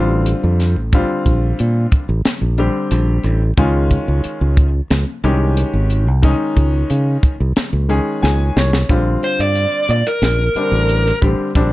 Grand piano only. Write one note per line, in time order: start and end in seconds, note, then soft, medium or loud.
0.00 0.75 D3 medium
0.00 0.75 G3 medium
0.00 0.75 C4 medium
0.00 0.75 F4 medium
0.94 2.02 D3 medium
0.94 2.02 G3 medium
0.94 2.02 C4 medium
0.94 2.02 F4 medium
2.58 3.40 D3 medium
2.58 3.40 G3 medium
2.58 3.40 C4 medium
2.58 3.40 G4 medium
3.57 4.66 D#3 medium
3.57 4.67 G#3 medium
3.57 4.67 C#4 medium
3.57 4.67 F4 medium
5.24 6.05 D#3 medium
5.24 6.06 G#3 medium
5.24 6.06 C#4 medium
5.24 6.06 G4 medium
6.22 7.32 D#3 medium
6.22 7.32 G#3 medium
6.22 7.32 C#4 medium
6.22 7.33 D#4 medium
7.89 8.71 D#3 medium
7.89 8.71 G#3 medium
7.89 8.71 C#4 medium
7.89 8.72 G#4 medium
8.23 8.53 G#5 medium
8.57 8.87 C#5 medium
8.89 9.98 D3 medium
8.89 9.98 G3 medium
8.89 9.98 C4 medium
8.89 9.99 F4 medium
10.56 11.10 D3 medium
10.56 11.10 G3 medium
10.56 11.11 C4 medium
10.56 11.11 D4 medium
11.22 11.49 D3 medium
11.22 11.49 G3 medium
11.22 11.49 C4 medium
11.22 11.50 G4 medium
11.55 11.73 D3 medium
11.55 11.73 G3 medium
11.55 11.73 C4 medium
11.55 11.73 D4 medium